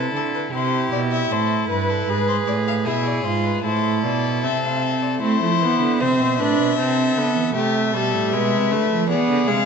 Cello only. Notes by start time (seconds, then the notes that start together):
Already playing: C3
0.14 D3
0.52 C3
0.92 B2
1.30 A2
1.70 G2
2.08 G#2
2.46 A2
2.85 B2
3.24 G#2
3.63 A2
4.04 B2
4.43 C3
5.22 A3
5.41 F3
5.61 E3
5.81 D3
6.01 C3
6.20 B2
6.39 A2
6.59 B2
6.79 C3
7.16 D3
7.35 E3
7.54 C3
7.93 B2
8.14 A2
8.32 B2
8.52 C3
8.71 D3
8.91 F3
9.11 E3
9.29 D3
9.48 C3